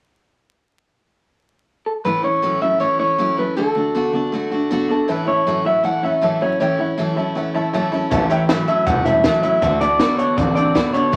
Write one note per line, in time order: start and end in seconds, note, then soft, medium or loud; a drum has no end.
1.86 1.91 A4 medium
2.05 2.24 A2 medium
2.05 2.22 A2 medium
2.05 2.24 E3 medium
2.05 2.22 E3 medium
2.05 2.24 A3 medium
2.05 2.23 C#4 medium
2.05 2.22 E4 medium
2.05 2.24 B4 medium
2.23 2.41 A2 medium
2.23 2.41 E3 medium
2.23 2.42 A3 soft
2.23 2.43 C#4 soft
2.23 2.43 E4 soft
2.23 2.61 C#5 medium
2.42 2.62 A2 medium
2.42 2.60 A2 medium
2.42 2.62 E3 medium
2.42 2.60 F#3 medium
2.42 2.62 A3 medium
2.42 2.62 C#4 medium
2.42 2.60 E4 medium
2.61 2.79 A2 medium
2.61 2.80 F#3 medium
2.61 2.80 A3 soft
2.61 2.80 C#4 medium
2.61 2.81 E4 medium
2.61 2.80 E5 medium
2.80 2.98 A2 medium
2.80 2.99 E3 medium
2.80 2.98 E3 medium
2.80 3.00 A3 medium
2.80 3.00 C#4 medium
2.80 2.98 E4 medium
2.80 2.98 C#5 medium
2.99 3.17 A2 medium
2.99 3.17 E3 medium
2.99 3.18 A3 soft
2.99 3.18 C#4 medium
2.99 3.19 E4 soft
2.99 3.35 C#5 medium
3.18 3.38 A2 medium
3.18 3.36 A2 medium
3.18 3.38 E3 medium
3.18 3.36 F#3 medium
3.18 3.38 A3 medium
3.18 3.37 C#4 medium
3.18 3.36 E4 medium
3.37 3.55 A2 medium
3.37 3.55 F#3 medium
3.37 3.56 A3 soft
3.37 3.57 C#4 medium
3.37 3.56 E4 medium
3.37 3.57 B4 medium
3.56 3.76 D3 medium
3.56 3.74 D3 medium
3.56 3.74 A3 medium
3.56 3.76 A3 medium
3.56 3.76 D4 medium
3.56 3.74 F#4 medium
3.56 4.90 A4 medium
3.75 3.93 D3 medium
3.75 3.93 A3 medium
3.75 3.94 A3 soft
3.75 3.95 D4 soft
3.75 3.95 F#4 soft
3.95 4.14 D3 medium
3.95 4.12 D3 medium
3.95 4.14 A3 medium
3.95 4.12 B3 medium
3.95 4.13 D4 medium
3.95 4.12 F#4 medium
4.13 4.30 D3 medium
4.13 4.32 A3 soft
4.13 4.31 B3 medium
4.13 4.33 D4 medium
4.13 4.32 F#4 medium
4.32 4.51 D3 medium
4.32 4.50 D3 medium
4.32 4.50 A3 medium
4.32 4.52 A3 medium
4.32 4.52 D4 medium
4.32 4.50 F#4 medium
4.51 4.68 D3 medium
4.51 4.69 A3 medium
4.51 4.70 A3 medium
4.51 4.71 D4 medium
4.51 4.71 F#4 medium
4.70 4.88 D3 medium
4.70 4.90 D3 medium
4.70 4.90 A3 medium
4.70 4.88 B3 medium
4.70 4.89 D4 loud
4.70 4.88 F#4 loud
4.89 5.06 D3 medium
4.89 5.08 A3 soft
4.89 5.06 B3 medium
4.89 5.09 D4 soft
4.89 5.08 F#4 soft
4.89 5.09 A4 medium
5.08 5.27 A2 medium
5.08 5.25 A2 medium
5.08 5.28 E3 medium
5.08 5.26 E3 medium
5.08 5.28 A3 medium
5.08 5.27 C#4 medium
5.08 5.25 E4 medium
5.08 5.28 B4 medium
5.08 5.19 C#5 medium
5.08 5.20 E5 medium
5.08 5.20 A5 loud
5.27 5.44 A2 medium
5.27 5.45 E3 medium
5.27 5.47 A3 soft
5.27 5.47 C#4 soft
5.27 5.46 E4 soft
5.27 5.39 C#5 medium
5.27 5.66 C#5 loud
5.27 5.39 E5 medium
5.27 5.39 A5 medium
5.46 5.63 A2 medium
5.46 5.65 A2 medium
5.46 5.66 E3 medium
5.46 5.64 F#3 medium
5.46 5.66 A3 medium
5.46 5.65 C#4 medium
5.46 5.64 E4 medium
5.46 5.58 C#5 medium
5.46 5.58 E5 medium
5.46 5.58 A5 medium
5.65 5.82 A2 medium
5.65 5.82 F#3 medium
5.65 5.83 A3 soft
5.65 5.84 C#4 soft
5.65 5.84 E4 medium
5.65 5.77 C#5 medium
5.65 5.77 E5 medium
5.65 5.85 E5 loud
5.65 5.77 F#5 medium
5.83 6.01 A2 medium
5.83 6.03 E3 medium
5.83 6.01 E3 loud
5.83 6.03 A3 medium
5.83 6.03 C#4 medium
5.83 6.02 E4 medium
5.83 5.96 C#5 medium
5.83 5.96 E5 medium
5.83 6.04 F#5 loud
5.83 5.96 A5 medium
6.03 6.20 A2 medium
6.03 6.20 E3 medium
6.03 6.21 A3 soft
6.03 6.22 C#4 soft
6.03 6.22 E4 soft
6.03 6.14 C#5 medium
6.03 6.15 E5 medium
6.03 6.41 E5 loud
6.03 6.15 F#5 medium
6.21 6.41 A2 medium
6.21 6.39 A2 medium
6.21 6.41 E3 medium
6.21 6.39 F#3 medium
6.21 6.41 A3 medium
6.21 6.41 C#4 medium
6.21 6.39 E4 medium
6.21 6.34 C#5 loud
6.21 6.34 E5 medium
6.21 6.34 A5 loud
6.41 6.58 A2 medium
6.41 6.59 F#3 medium
6.41 6.60 A3 soft
6.41 6.60 C#4 soft
6.41 6.60 E4 medium
6.41 6.53 C#5 medium
6.41 6.59 C#5 medium
6.41 6.53 E5 medium
6.41 6.53 F#5 medium
6.60 6.77 A2 medium
6.60 6.79 A2 medium
6.60 6.77 E3 medium
6.60 6.79 E3 medium
6.60 6.80 A3 medium
6.60 6.79 C#4 medium
6.60 6.78 E4 medium
6.60 6.71 C#5 medium
6.60 7.89 C#5 medium
6.60 6.72 E5 medium
6.60 6.72 G5 loud
6.79 6.96 A2 medium
6.79 6.96 E3 medium
6.79 6.98 A3 soft
6.79 6.98 C#4 soft
6.79 6.98 E4 soft
6.79 6.90 C#5 medium
6.79 6.90 E5 medium
6.79 6.91 F#5 medium
6.98 7.15 A2 medium
6.98 7.17 A2 medium
6.98 7.17 E3 medium
6.98 7.15 F#3 medium
6.98 7.17 A3 medium
6.98 7.17 C#4 medium
6.98 7.16 E4 medium
6.98 7.09 C#5 medium
6.98 7.09 E5 medium
6.98 7.10 A5 medium
7.16 7.34 A2 medium
7.16 7.34 F#3 medium
7.16 7.35 A3 soft
7.16 7.36 C#4 medium
7.16 7.36 E4 medium
7.16 7.28 C#5 medium
7.16 7.28 E5 medium
7.16 7.28 A5 medium
7.35 7.53 A2 medium
7.35 7.54 E3 medium
7.35 7.53 E3 loud
7.35 7.55 A3 medium
7.35 7.55 C#4 medium
7.35 7.53 E4 medium
7.35 7.47 C#5 medium
7.35 7.47 E5 medium
7.35 7.48 F#5 medium
7.54 7.72 A2 medium
7.54 7.72 E3 medium
7.54 7.74 A3 medium
7.54 7.74 C#4 soft
7.54 7.73 E4 medium
7.54 7.65 C#5 loud
7.54 7.66 E5 medium
7.54 7.66 A5 loud
7.73 7.90 A2 medium
7.73 7.92 A2 medium
7.73 7.93 E3 medium
7.73 7.90 F#3 loud
7.73 7.93 A3 medium
7.73 7.92 C#4 medium
7.73 7.91 E4 loud
7.73 7.85 C#5 loud
7.73 7.85 E5 medium
7.73 7.85 A5 loud
7.92 8.09 A2 medium
7.92 8.10 F#3 medium
7.92 8.11 A3 medium
7.92 8.11 C#4 medium
7.92 8.11 E4 medium
7.92 8.03 C#5 medium
7.92 8.04 E5 medium
7.92 8.04 A5 loud
8.10 8.51 A1 medium
8.10 8.30 A2 medium
8.10 8.28 A2 medium
8.10 8.30 E3 medium
8.10 8.29 E3 medium
8.10 8.31 A3 medium
8.10 8.31 C#4 loud
8.10 8.29 E4 medium
8.10 8.22 C#5 loud
8.10 8.23 E5 loud
8.10 8.23 A5 loud
8.10 kick loud
8.10 closed hi-hat medium
8.30 8.47 A2 medium
8.30 8.48 E3 medium
8.30 8.49 A3 soft
8.30 8.49 C#4 soft
8.30 8.49 E4 medium
8.30 8.41 C#5 loud
8.30 8.42 E5 loud
8.30 8.42 G5 loud
8.30 closed hi-hat medium
8.48 8.68 A2 medium
8.48 8.66 A2 medium
8.48 8.68 E3 medium
8.48 8.66 F#3 medium
8.48 8.68 A3 medium
8.48 8.69 C#4 medium
8.48 8.67 E4 loud
8.48 8.60 C#5 medium
8.48 8.60 E5 medium
8.48 8.60 B5 medium
8.48 snare loud
8.48 closed hi-hat medium
8.67 8.85 A2 medium
8.67 8.85 F#3 medium
8.67 8.86 A3 soft
8.67 8.88 C#4 medium
8.67 8.87 E4 medium
8.67 8.79 C#5 medium
8.67 8.79 E5 medium
8.67 8.86 E5 loud
8.67 8.79 A5 medium
8.67 muted upright bass stroke medium
8.67 closed hi-hat medium
8.86 9.27 E1 medium
8.86 9.04 A2 medium
8.86 9.06 E3 medium
8.86 9.04 G3 loud
8.86 9.06 A3 medium
8.86 9.06 C#4 medium
8.86 9.04 E4 medium
8.86 8.98 C#5 medium
8.86 8.98 E5 medium
8.86 9.04 F#5 loud
8.86 8.98 A5 medium
8.86 kick loud
8.86 closed hi-hat medium
9.05 9.23 A2 medium
9.05 9.23 G3 medium
9.05 9.24 A3 soft
9.05 9.25 C#4 soft
9.05 9.24 E4 medium
9.05 9.16 C#5 medium
9.05 9.17 E5 medium
9.05 9.41 E5 loud
9.05 9.17 A5 medium
9.05 snare soft
9.05 closed hi-hat medium
9.24 9.43 A2 medium
9.24 9.41 A2 medium
9.24 9.43 E3 medium
9.24 9.42 F#3 medium
9.24 9.44 A3 medium
9.24 9.43 C#4 medium
9.24 9.42 E4 medium
9.24 9.35 C#5 medium
9.24 9.36 E5 medium
9.24 9.36 A5 loud
9.24 kick medium
9.24 snare loud
9.24 closed hi-hat loud
9.43 9.60 A2 medium
9.43 9.60 F#3 medium
9.43 9.62 A3 soft
9.43 9.63 C#4 soft
9.43 9.62 E4 medium
9.43 9.54 C#5 medium
9.43 9.80 E5 loud
9.43 9.55 E5 medium
9.43 9.55 F#5 medium
9.43 muted upright bass stroke medium
9.43 closed hi-hat medium
9.62 10.02 D2 medium
9.62 9.79 D3 medium
9.62 9.81 D3 medium
9.62 9.79 A3 loud
9.62 9.81 A3 medium
9.62 9.82 D4 medium
9.62 9.80 F#4 medium
9.62 9.73 D5 medium
9.62 9.73 F#5 medium
9.62 9.74 A5 loud
9.62 kick loud
9.62 closed hi-hat medium
9.80 9.98 D3 medium
9.80 9.98 A3 medium
9.80 9.99 A3 soft
9.80 10.00 D4 soft
9.80 10.00 F#4 soft
9.80 9.92 D5 loud
9.80 10.18 D5 loud
9.80 9.92 F#5 medium
9.80 9.93 A5 loud
9.80 snare soft
9.80 closed hi-hat medium
9.99 10.16 D3 medium
9.99 10.19 D3 medium
9.99 10.19 A3 medium
9.99 10.17 B3 medium
9.99 10.19 D4 medium
9.99 10.17 F#4 medium
9.99 10.11 D5 medium
9.99 10.11 F#5 medium
9.99 10.11 B5 medium
9.99 snare loud
9.99 closed hi-hat medium
10.18 10.35 D3 medium
10.18 10.36 A3 soft
10.18 10.36 B3 medium
10.18 10.38 D4 soft
10.18 10.37 F#4 medium
10.18 10.37 C#5 medium
10.18 10.30 D5 medium
10.18 10.30 F#5 medium
10.18 10.31 A5 medium
10.18 muted upright bass stroke medium
10.18 closed hi-hat medium
10.37 10.77 A1 medium
10.37 10.56 D3 medium
10.37 10.54 D3 medium
10.37 10.56 A3 medium
10.37 10.55 C4 loud
10.37 10.56 D4 medium
10.37 10.54 F#4 medium
10.37 10.54 D5 medium
10.37 10.49 D5 medium
10.37 10.49 F#5 medium
10.37 10.49 A5 medium
10.37 kick loud
10.37 closed hi-hat medium
10.55 10.73 D3 medium
10.55 10.74 A3 soft
10.55 10.73 C4 medium
10.55 10.75 D4 medium
10.55 10.75 F#4 medium
10.55 10.93 D5 medium
10.55 10.67 D5 medium
10.55 10.68 F#5 medium
10.55 10.68 A5 medium
10.55 closed hi-hat medium
10.75 10.94 D3 medium
10.75 10.92 D3 medium
10.75 10.94 A3 medium
10.75 10.92 B3 medium
10.75 10.93 D4 medium
10.75 10.92 F#4 medium
10.75 10.86 D5 medium
10.75 10.87 F#5 medium
10.75 10.87 B5 loud
10.75 kick medium
10.75 snare loud
10.75 closed hi-hat medium
10.93 11.11 D3 medium
10.93 11.12 A3 soft
10.93 11.11 B3 medium
10.93 11.13 D4 medium
10.93 11.12 F#4 medium
10.93 11.16 C#5 loud
10.93 11.05 D5 medium
10.93 11.06 F#5 medium
10.93 11.06 A5 medium
10.93 muted upright bass stroke medium
10.93 closed hi-hat medium
11.12 11.16 A2 medium
11.12 11.16 E3 medium
11.12 11.16 C#5 loud